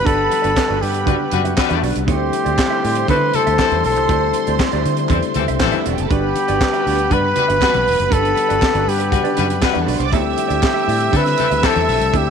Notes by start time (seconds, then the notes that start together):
Already playing: D3 G3 B3 B4 F#5 B5
0.05 G1 D4 F#4 A4 B4 D5, kick, closed hi-hat, muted conga
0.18 muted clean electric guitar stroke
0.30 muted clean electric guitar stroke, closed hi-hat, muted conga
0.42 G1 D4 F#4 B4 D5, closed hi-hat
0.56 muted clean electric guitar stroke, kick, snare, clap, high conga
0.68 G1 D4 F#4 B4 D5
0.81 G2 G4, muted clean electric guitar stroke, open hi-hat
0.93 muted clean electric guitar stroke, closed hi-hat
1.06 G3 D4 F#4 B4 D5, kick, closed hi-hat, muted conga, low conga
1.20 muted clean electric guitar stroke
1.31 F#2 G3 F#4 B4, muted clean electric guitar stroke, closed hi-hat, muted conga, low conga
1.44 D4 F#4 B4 E5, closed hi-hat
1.57 G3 F#4 B4, kick, snare, clap, high conga
1.69 E2 D4 F#4 B4 E5, closed hi-hat, high conga
1.82 B1 D4 F#4 B4 D5, open hi-hat
1.95 C2, muted clean electric guitar stroke, closed hi-hat
2.06 D2 A3 C4 E4 G4 C5 D5 C6, kick, closed hi-hat, muted conga
2.20 muted clean electric guitar stroke
2.33 muted clean electric guitar stroke, closed hi-hat, muted conga
2.45 D2 C4 E4 G4 D5, closed hi-hat
2.58 kick, snare, clap, high conga
2.70 C4 E4 G4 E5
2.83 A2 C4 E4 G4 D5, open hi-hat
2.95 muted clean electric guitar stroke, closed hi-hat
3.08 D3 E3 C4 E4 G4 A4 B4 D5, kick, closed hi-hat, muted conga, low conga
3.22 muted clean electric guitar stroke
3.33 E3 C4 A4, muted clean electric guitar stroke, closed hi-hat, muted conga, low conga
3.47 D2 C4 E4 G4 E5, closed hi-hat
3.58 E3 C4 A4, muted clean electric guitar stroke, kick, snare, clap, high conga
3.71 E2, muted clean electric guitar stroke, closed hi-hat, high conga
3.84 B1 A4, open hi-hat
3.96 C2, muted clean electric guitar stroke, closed hi-hat
4.08 D2 C4 E4 G4 D5, kick, closed hi-hat, muted conga
4.23 muted clean electric guitar stroke
4.33 muted clean electric guitar stroke, closed hi-hat, muted conga
4.47 D2 C4 E4 G4 D5, closed hi-hat
4.59 muted clean electric guitar stroke, kick, snare, clap, high conga
4.72 D2 C4 E4 G4 D5, closed hi-hat
4.85 D3, muted clean electric guitar stroke, closed hi-hat
4.97 muted clean electric guitar stroke, closed hi-hat
5.09 E2 E3 C4 E4 G4 A4 D5, kick, clap, closed hi-hat, muted conga, low conga
5.23 muted clean electric guitar stroke, closed hi-hat
5.34 D2 E3 C4 A4, muted clean electric guitar stroke, closed hi-hat, muted conga, low conga
5.48 C2 C4 E4 G4 E5, closed hi-hat
5.59 A1 E3 C4 A4, kick, snare, clap, high conga
5.72 C4 E4 G4 E5, closed hi-hat, high conga
5.78 E4 E5
5.85 E1 C4 E4 F#4 G4 D5 F#5, closed hi-hat
5.93 G4 G5
5.97 F#1 A4 A5, muted clean electric guitar stroke, closed hi-hat
6.10 G1 D3 B3 D4 F#4 G4 B4 D5 F#5 B5, kick, closed hi-hat, muted conga
6.23 muted clean electric guitar stroke
6.35 muted clean electric guitar stroke, closed hi-hat, muted conga
6.48 G1 D4 F#4 B4 D5, closed hi-hat
6.61 kick, snare, clap, high conga
6.73 D4 F#4 B4 E5, closed hi-hat
6.86 D2 D4 F#4 B4 D5, open hi-hat
6.98 muted clean electric guitar stroke, closed hi-hat
7.10 G2 G3 D4 F#4 B4 D5, kick, closed hi-hat, muted conga, low conga
7.23 muted clean electric guitar stroke
7.35 G3 F#4 B4, muted clean electric guitar stroke, closed hi-hat, muted conga, low conga
7.48 G1 D4 F#4 B4 E5, closed hi-hat
7.60 G3 F#4 B4, muted clean electric guitar stroke, kick, snare, clap, high conga
7.73 B1, muted clean electric guitar stroke, closed hi-hat, high conga
7.88 E1, open hi-hat
7.99 F#1, muted clean electric guitar stroke, closed hi-hat
8.10 G1 D4 F#4 A4 B4 D5, kick, closed hi-hat
8.24 muted clean electric guitar stroke, closed hi-hat
8.36 muted clean electric guitar stroke, closed hi-hat, muted conga
8.49 G1 D4 F#4 B4 D5, closed hi-hat
8.61 muted clean electric guitar stroke, kick, snare, clap, high conga
8.74 G1 D4 F#4 B4 D5, closed hi-hat
8.86 G2 G4, muted clean electric guitar stroke, open hi-hat
8.99 muted clean electric guitar stroke, closed hi-hat
9.12 G3 F#4 B4, muted clean electric guitar stroke, kick, closed hi-hat, muted conga, low conga
9.24 D4 F#4 B4 D5, closed hi-hat
9.36 F#2 G3 D4 F#4 B4 D5, closed hi-hat, muted conga, low conga
9.49 muted clean electric guitar stroke, closed hi-hat
9.61 G3 F#4 B4, muted clean electric guitar stroke, kick, snare, clap, high conga
9.73 E2 D4 F#4 B4 E5, closed hi-hat, high conga
9.79 A4 A5
9.86 B1 D4 F#4 B4 D5 B5, open hi-hat
9.96 C2 C5 C6, muted clean electric guitar stroke
10.00 closed hi-hat
10.04 D5 D6
10.12 D2 G3 A3 C4 E4 G4 D5 E5 E6, kick, closed hi-hat, muted conga
10.25 muted clean electric guitar stroke
10.36 muted clean electric guitar stroke, closed hi-hat, muted conga
10.48 D2 C4 E4 G4 D5, closed hi-hat
10.63 kick, snare, clap, high conga
10.74 C4 E4 G4 E5
10.87 A2 C4 E4 G4 D5, open hi-hat
11.00 muted clean electric guitar stroke, closed hi-hat
11.12 D3 E3 C4 E4 G4 A4 D5, kick, closed hi-hat, muted conga, low conga
11.17 B4
11.25 muted clean electric guitar stroke, snare, closed hi-hat
11.38 E3 C4 A4, muted clean electric guitar stroke, closed hi-hat, muted conga, low conga
11.51 D2 C4 E4 G4 E5, closed hi-hat
11.63 E3 C4 A4, muted clean electric guitar stroke, kick, snare, clap, high conga
11.75 E2, muted clean electric guitar stroke, closed hi-hat, high conga
11.88 B1, open hi-hat
12.00 C2, muted clean electric guitar stroke, closed hi-hat
12.13 D2 C4 E4 G4 D5, kick, closed hi-hat
12.26 muted clean electric guitar stroke